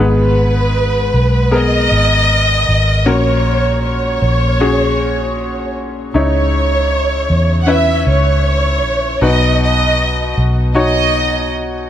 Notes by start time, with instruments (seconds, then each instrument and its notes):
0.00 fingered electric bass G#1, upright piano G#2 B3 G#4 B4, violin section B4
1.14 fingered electric bass B1
1.51 upright piano B3 G#4 A#4, violin section D#5
1.91 fingered electric bass G#1
2.69 fingered electric bass G#1
3.06 fingered electric bass A#1, upright piano A#2 C#4 F#4 A#4, violin section C#5
3.85 violin section C#5
4.22 fingered electric bass A#1
4.60 upright piano C#4 F#4 G#4
6.14 fingered electric bass C#2, upright piano C#3 D#4 E4 C#5, violin section C#5
7.30 fingered electric bass E2
7.62 violin section F#5
7.66 upright piano C#4 E4 B4, violin section E5
8.07 fingered electric bass C#2, violin section C#5
8.83 fingered electric bass A#1
9.21 fingered electric bass B1, upright piano B2 D#4 F#4 B4, violin section D#5
9.63 violin section D#5
10.38 fingered electric bass B1
10.75 upright piano D#4 F#4 C#5, violin section D#5